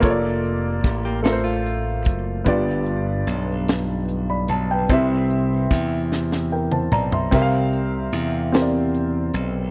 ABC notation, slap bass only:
X:1
M:6/8
L:1/8
Q:3/8=49
K:Cmix
V:1 name="Slap bass" clef=bass
F,,,2 A,,,3 _G,,, | G,,,2 =B,,,3 B,,, | C,,2 E,,3 =B,,, | C,,2 E,,3 =B,,, |]